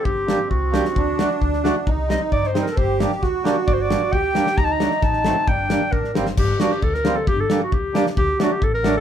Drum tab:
CC |--------|--------|--------|--------|
SD |--o---oo|--oo-oo-|--o--ooo|--ooo-o-|
BD |o---o---|o---o---|o---o---|o---o---|

CC |--------|--------|--------|x-------|
SD |--o---oo|o-ooooo-|--o--ooo|--oo-oo-|
BD |o---o---|o---o---|o---o---|o---o---|

CC |--------|--------|
SD |--o---oo|--o---o-|
BD |o---o---|o---o---|